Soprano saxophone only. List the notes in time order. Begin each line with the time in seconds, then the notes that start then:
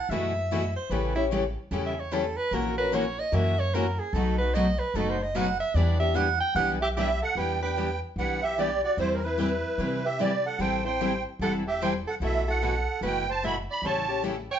Already playing: F#5
0.10 E5
0.76 C5
0.90 B4
1.16 E4
1.86 E5
1.99 C#5
2.13 A4
2.37 B4
2.54 A#4
2.78 B4
2.94 C#5
3.19 D#5
3.34 E5
3.59 C#5
3.74 A#4
3.99 G#4
4.14 A4
4.38 B4
4.54 D#5
4.79 B4
4.96 A4
5.10 C5
5.22 D#5
5.36 F#5
5.60 E5
5.75 D5
5.99 E5
6.16 F#5
6.40 G5
6.56 F#5
6.82 G4
6.96 G4
7.22 A4
7.37 B4
7.62 B4
8.19 B4
8.44 G4
8.60 G4
8.84 F#4
9.00 E4
9.16 C4
9.25 E4
10.05 G4
10.21 G4
10.46 A4
10.61 C5
10.86 C5
11.42 A4
11.67 G4
11.82 C5
12.07 A4
12.24 A4
12.48 A4
13.03 B4
13.29 C5
13.44 E5
13.70 D5
13.85 C#5
14.51 C#5